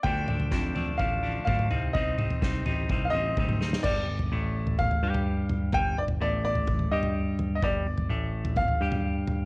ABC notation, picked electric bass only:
X:1
M:4/4
L:1/8
Q:1/4=127
K:Dphr
V:1 name="Picked electric bass" clef=bass
D,,2 F,,2 A,,,2 D,, C,,- | C,,2 C,, A,,, C,, A,,, D,,2 | G,,, G,,, A,,,3 G,,3 | G,,, G,,, A,,,3 G,,3 |
G,,, G,,, A,,,3 G,,3 |]